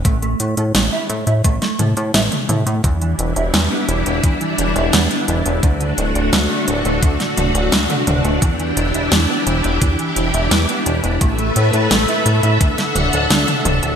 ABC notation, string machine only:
X:1
M:4/4
L:1/8
Q:1/4=86
K:Em
V:1 name="String machine"
z8 | [G,DE]8 | [A,DF]8 | [EG]8 |
[A,ABe]4 [DAf]4 |]